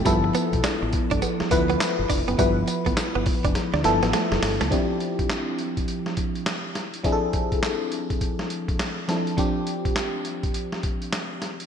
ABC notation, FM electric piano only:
X:1
M:4/4
L:1/8
Q:"Swing 16ths" 1/4=103
K:Ddor
V:1 name="FM electric piano"
[F,B,EA]3 z2 [F,B,EB]2 z | [F,B,EB]3 z2 [F,B,EA]2 z | [F,CDEG]8 | [F,CDE^GA]6- [F,CDEGA] [F,CDEA] |
[F,CDG]8 |]